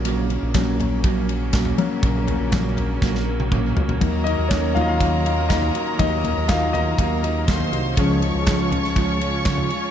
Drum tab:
RD |x-x-x-x-x-x-x-x-|x-x-x-x---------|x-x-x-x-x-x-x-x-|x-x-x-x-x-x-x-x-|
CP |----x-------x---|----x-----------|----x-------x---|----x-------x---|
SD |----o-------o---|----o---oo------|----o-------o---|----o-------o---|
T1 |----------------|-----------o----|----------------|----------------|
T2 |----------------|------------o---|----------------|----------------|
FT |------o------o--|--o---o-------oo|------o------o--|--o---o------o--|
BD |----o---o---o---|o---o---o---o---|o---o---o---o---|o---o---o---o---|

RD |x-x-x-x-x-x-x-x-|
CP |----x-------x---|
SD |----o--o----o---|
T1 |----------------|
T2 |----------------|
FT |------o------o--|
BD |o---o---o---o---|